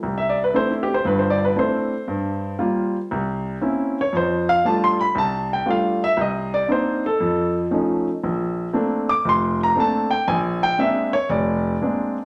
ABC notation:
X:1
M:4/4
L:1/16
Q:"Swing" 1/4=117
K:C
V:1 name="Grand piano"
z e d B c E G c B c d B c4- | c8 z6 _d2 | c2 f2 (3a2 c'2 b2 a2 g2 f2 e2 | _e2 d2 c2 A4 z6 |
z6 d'2 c'2 _b2 a2 g2 | _a2 g2 e2 _d2 =d6 z2 |]
V:2 name="Grand piano"
C,,4 [A,CDE]2 z2 [G,,,G,,]4 [A,CDE]2 z2 | G,,4 [G,_B,F]2 z2 C,,4 [B,C_DE]2 z2 | F,,4 [G,A,DF]2 z2 C,,4 [G,A,DF]2 z2 | C,,4 [_B,CD_E]2 z2 F,,4 [F,A,^CE]2 z2 |
_B,,,4 [A,_B,CD]2 z2 F,,,4 [A,B,CD]2 z2 | _B,,,4 [_A,_B,CD]2 z2 F,,,4 [A,B,CD]2 z2 |]